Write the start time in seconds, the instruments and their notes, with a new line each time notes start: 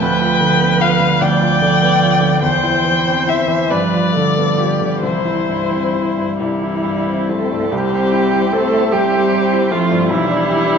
0.02 grand piano D2, cello F3, viola B4, violin G5
0.21 grand piano F4
0.40 grand piano D3
0.61 grand piano B3
0.80 grand piano F4, violin F5
1.00 grand piano D3
1.21 grand piano D2, cello F3, viola D5, violin G5
1.41 grand piano F4
1.62 grand piano D3
1.82 grand piano B3
2.03 grand piano F4
2.21 grand piano D3
2.42 grand piano E2, cello E3, viola C5, violin G5
2.63 grand piano E4
2.84 grand piano E3
3.06 grand piano C4
3.27 grand piano E4, violin E5
3.48 grand piano E3
3.70 grand piano G2, cello F3, viola B4, violin D5
3.93 grand piano F4
4.13 grand piano D3, viola A4
4.37 grand piano B3
4.58 grand piano F4, viola G4
4.81 grand piano D3
5.03 grand piano C2, cello E3, viola E4, violin C5
5.25 grand piano E4
5.49 grand piano G2
5.71 grand piano C4
5.95 grand piano E4
6.17 grand piano G2
6.39 grand piano C2, cello E3, violin G3, viola E4
6.62 grand piano E4
6.84 grand piano G2
7.06 grand piano C4
7.29 cello A3, violin C4, grand piano E4, viola A4
7.51 grand piano G2
7.72 grand piano C2, cello G3, violin C4, viola G4
7.92 grand piano C4
8.13 grand piano E4
8.32 grand piano G4
8.52 cello A3, violin C4, viola A4, grand piano C5
8.74 grand piano E5
8.92 cello G3, violin C4, viola G4, grand piano G5
9.12 grand piano E5
9.33 grand piano C5
9.53 grand piano E4
9.71 cello F3, violin A3, grand piano C4, viola F4
9.92 grand piano G2
10.09 grand piano B1, cello E3, violin G3, viola E4
10.30 grand piano D4
10.48 grand piano G4
10.66 grand piano D4